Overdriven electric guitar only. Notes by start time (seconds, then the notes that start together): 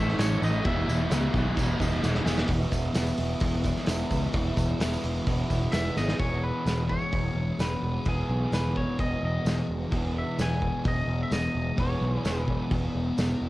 Already playing: E3 C#4 E4
0.00 A3
0.19 A2 E3 A3 C#4 E4
0.42 A3 C#4 E4
0.63 E2 B2 E3 G#3 B3 E4
0.86 E3 G#3 B3 E4
1.10 E3 G#3 B3 E4
1.32 E2 B2 E3 G#3 B3 E4
1.55 E3 G#3 B3 E4
1.79 E3 G#3 B3 E4
2.02 E2 B2 E3 G#3 B3 E4
2.25 E3 G#3 B3 E4
2.48 E2 B2 E3 G#3 B3 E4
2.94 E3 G#3 B3 E4
3.41 E2 B2 E3 G#3 B3 E4
3.63 E3 G#3 B3 E4
3.87 E3 G#3 B3 E4
4.33 E2 B2 E3 G#3 B3 E4
4.80 E3 G#3 B3 E4
5.25 E2 B2 E3 G#3 B3 E4
5.48 E3 G#3 B3 E4
5.71 E3 G#3 B3 E4
6.18 E2 B2 E3 G#3 B3 G#4
8.06 E2 B2 E3 G#3 B3 G#4
9.91 E2 B2 E3 G#3 B3 G#4
11.77 E2 B2 E3 G#3 B3 G#4